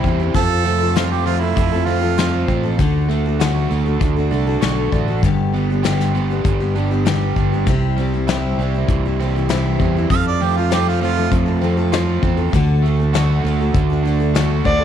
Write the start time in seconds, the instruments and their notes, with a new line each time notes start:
Already playing: steel-string acoustic guitar C3 G3 C4 E4 G4, overdriven electric guitar E3 G3
0.04 fingered electric bass E2, overdriven electric guitar C4, kick
0.20 steel-string acoustic guitar C4 E4 G4
0.34 overdriven electric guitar F2, fingered electric bass F2, steel-string acoustic guitar F3 C4 F4 A4, harmonica A4, kick, closed hi-hat
0.64 steel-string acoustic guitar F3 C4 F4 A4, overdriven electric guitar A3
0.80 steel-string acoustic guitar C4 F4 A4
0.96 steel-string acoustic guitar F3 C4 F4 A4, harmonica F4, snare, closed hi-hat
1.11 harmonica G4
1.25 steel-string acoustic guitar F3 C4 F4 A4, overdriven electric guitar A3, harmonica F4
1.41 steel-string acoustic guitar C4 A4, harmonica E4
1.56 fingered electric bass F2, overdriven electric guitar F3, kick, closed hi-hat
1.72 steel-string acoustic guitar C4 F4 A4
1.86 steel-string acoustic guitar F3 C4 F4, harmonica F4
1.90 steel-string acoustic guitar A4
2.01 steel-string acoustic guitar C4 F4 A4
2.18 steel-string acoustic guitar F3 C4 F4 A4, snare, closed hi-hat
2.48 fingered electric bass A1, overdriven electric guitar C4, kick
2.63 steel-string acoustic guitar C4 F4 A4
2.79 fingered electric bass D2, steel-string acoustic guitar D3 A3 D4 F#4 A4, kick, closed hi-hat
3.09 steel-string acoustic guitar A3 D4 F#4 A4
3.26 steel-string acoustic guitar D4 F#4 A4
3.40 steel-string acoustic guitar D3 A3 D4 F#4 A4, snare, closed hi-hat
3.71 fingered electric bass D2, steel-string acoustic guitar A3 D4 F#4 A4
3.86 steel-string acoustic guitar D4 F#4 A4
4.00 fingered electric bass D2, overdriven electric guitar D3, kick, closed hi-hat
4.16 steel-string acoustic guitar D4 F#4 A4
4.31 fingered electric bass C2, steel-string acoustic guitar A3 D4 F#4 A4
4.47 steel-string acoustic guitar D4 F#4 A4
4.61 fingered electric bass B1, steel-string acoustic guitar D3 A3 D4, overdriven electric guitar F#4, snare, closed hi-hat
4.65 steel-string acoustic guitar F#4 A4
4.92 fingered electric bass A1, overdriven electric guitar D4, kick
5.08 steel-string acoustic guitar D4 F#4 A4
5.22 fingered electric bass G1, steel-string acoustic guitar G2 D3 G3 B3 D4, kick, closed hi-hat
5.26 steel-string acoustic guitar G4
5.54 steel-string acoustic guitar G3 B3 D4 G4
5.70 steel-string acoustic guitar G3 B3 D4 G4
5.83 steel-string acoustic guitar G2 D3 G3, overdriven electric guitar G4, snare, closed hi-hat
5.87 steel-string acoustic guitar B3 D4 G4
6.00 snare
6.15 steel-string acoustic guitar G3 B3 D4 G4
6.30 steel-string acoustic guitar G3 B3 D4 G4
6.44 fingered electric bass G1, overdriven electric guitar G3, kick, closed hi-hat
6.60 steel-string acoustic guitar G3 B3 D4 G4
6.76 steel-string acoustic guitar G3 B3 D4 G4
6.91 steel-string acoustic guitar G3 B3 D4 G4
7.06 steel-string acoustic guitar G2 D3 G3 B3 D4 G4, snare, closed hi-hat
7.36 fingered electric bass G1, overdriven electric guitar D4, kick
7.52 steel-string acoustic guitar G3 B3 D4 G4
7.66 fingered electric bass C2, steel-string acoustic guitar C3 G3 C4 E4 G4, kick, closed hi-hat
7.98 steel-string acoustic guitar G3 C4 E4 G4
8.14 steel-string acoustic guitar C4 E4 G4
8.28 steel-string acoustic guitar C3 G3 C4 E4 G4, snare, closed hi-hat
8.58 fingered electric bass C2, steel-string acoustic guitar G3 C4
8.62 steel-string acoustic guitar E4 G4
8.74 steel-string acoustic guitar C4 E4 G4
8.88 fingered electric bass C2, overdriven electric guitar E3, kick, closed hi-hat
9.06 steel-string acoustic guitar C4 E4 G4
9.20 steel-string acoustic guitar G3 C4 E4 G4
9.36 steel-string acoustic guitar C4 E4 G4
9.49 steel-string acoustic guitar C3 G3 C4 E4, snare, closed hi-hat
9.53 steel-string acoustic guitar G4
9.79 fingered electric bass E2, overdriven electric guitar C4, kick
9.97 steel-string acoustic guitar C4 E4 G4
10.10 fingered electric bass F2, overdriven electric guitar F2, steel-string acoustic guitar F3 C4 F4 A4, harmonica F5, kick, closed hi-hat
10.27 harmonica D5
10.41 steel-string acoustic guitar F3 C4 F4 A4, overdriven electric guitar A3, harmonica G4
10.57 steel-string acoustic guitar C4 F4 A4, harmonica F4
10.71 steel-string acoustic guitar F3 C4 F4 A4, harmonica G4, snare, closed hi-hat
10.88 harmonica F4
11.01 steel-string acoustic guitar F3 C4 F4 A4, overdriven electric guitar A3, harmonica F4
11.17 steel-string acoustic guitar C4 F4 A4
11.32 fingered electric bass F2, overdriven electric guitar F3, kick, closed hi-hat
11.46 steel-string acoustic guitar C4 F4 A4
11.61 steel-string acoustic guitar F3 C4 F4 A4
11.77 steel-string acoustic guitar C4 F4 A4
11.92 steel-string acoustic guitar F3 C4 F4 A4, snare, closed hi-hat
12.22 fingered electric bass E2, overdriven electric guitar C4, kick
12.37 steel-string acoustic guitar C4 F4 A4
12.53 fingered electric bass D2, steel-string acoustic guitar D3 A3 D4 F#4 A4, kick, closed hi-hat
12.84 steel-string acoustic guitar A3 D4 F#4 A4
12.99 steel-string acoustic guitar D4 F#4 A4
13.14 steel-string acoustic guitar D3 A3 D4 F#4 A4, snare, closed hi-hat
13.44 fingered electric bass D2, steel-string acoustic guitar A3 D4 F#4
13.48 steel-string acoustic guitar A4
13.61 steel-string acoustic guitar D4 F#4 A4
13.74 fingered electric bass D2, overdriven electric guitar D3, kick, closed hi-hat
13.90 steel-string acoustic guitar D4 F#4 A4
14.05 steel-string acoustic guitar A3 D4 F#4 A4
14.20 steel-string acoustic guitar D4 F#4 A4
14.35 steel-string acoustic guitar D3 A3 D4 F#4 A4, snare, closed hi-hat
14.65 fingered electric bass D2, overdriven electric guitar D4, fiddle D5, kick
14.80 steel-string acoustic guitar A4